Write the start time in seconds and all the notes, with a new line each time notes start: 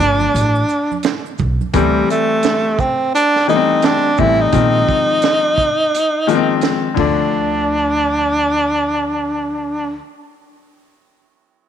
Already playing: D3 F3 A3 B3 D4
0.00 G1, closed hi-hat, shaker
0.20 high conga, maracas
0.34 A1, closed hi-hat, maracas
0.55 maracas
0.69 maracas, shaker
0.92 high conga, maracas
1.03 snare, closed hi-hat, maracas
1.26 maracas
1.38 B1, kick, low conga, shaker, maracas
1.61 high conga, maracas
1.73 D2 E3 G3 A3 C4, kick, closed hi-hat
2.10 A3, closed hi-hat, shaker
2.43 snare, closed hi-hat
2.79 C4, kick, shaker
3.15 D4, closed hi-hat
3.36 snare
3.48 E3 G3 A3 B3 D#4, shaker
3.56 C4
3.82 D4, snare, closed hi-hat
4.17 A1 E3 G3 A3 C4 E4, kick, shaker
4.41 D#4
4.52 A#1 D#3 F3 G#3 C4, kick, closed hi-hat
4.89 kick, shaker
5.22 snare, closed hi-hat
5.58 kick, shaker
5.95 closed hi-hat
6.27 D#3 F3 G#3 A#3, closed hi-hat, shaker
6.35 C4
6.61 snare, closed hi-hat
6.94 D2 D3 F3 A3, kick, ride
6.98 D4